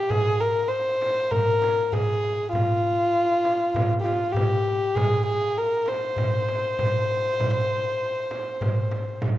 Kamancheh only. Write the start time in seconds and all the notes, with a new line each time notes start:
Already playing: G4
0.10 G#4
0.40 A#4
0.68 C5
1.31 A#4
1.93 G#4
2.52 F4
4.00 F4 G4
4.32 G4
4.95 G#4
5.26 G#4
5.58 A#4
5.88 C5